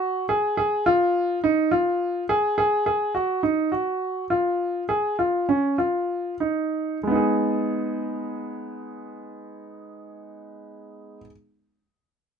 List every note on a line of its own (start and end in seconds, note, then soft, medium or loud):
0.00 0.24 F#4 medium
0.29 0.55 G#4 medium
0.57 0.83 G#4 medium
0.86 1.37 F4 medium
1.44 1.69 D#4 medium
1.71 2.23 F4 medium
2.29 2.55 G#4 medium
2.58 2.83 G#4 medium
2.86 3.12 G#4 medium
3.15 3.40 F#4 medium
3.43 3.69 D#4 medium
3.72 4.24 F#4 medium
4.30 4.82 F4 medium
4.89 5.15 G#4 medium
5.19 5.45 F4 medium
5.49 5.76 C#4 medium
5.78 6.34 F4 medium
6.40 6.97 D#4 medium
7.03 11.17 G#3 soft
7.07 11.22 B3 soft
7.07 11.25 D#4 soft
7.15 11.30 G#4 soft